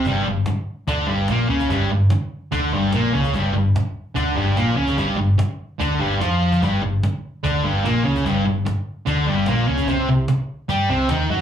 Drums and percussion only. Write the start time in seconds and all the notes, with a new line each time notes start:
0.05 cajon bass
0.46 cajon slap
0.88 cajon bass
1.28 cajon slap
1.60 cajon bass
1.70 cajon bass
2.10 cajon slap
2.52 cajon bass
2.92 cajon slap
3.24 cajon bass
3.34 cajon bass
3.76 cajon slap
4.16 cajon bass
4.57 cajon slap
4.88 cajon bass
4.98 cajon bass
5.39 cajon slap
5.81 cajon bass
6.21 cajon slap
6.52 cajon bass
6.63 cajon bass
7.03 cajon slap
7.45 cajon bass
7.86 cajon slap
8.16 cajon bass
8.26 cajon bass
8.66 cajon slap
9.07 cajon bass
9.46 cajon slap
9.78 cajon bass
9.88 cajon bass
10.28 cajon slap
10.69 cajon bass
11.09 cajon slap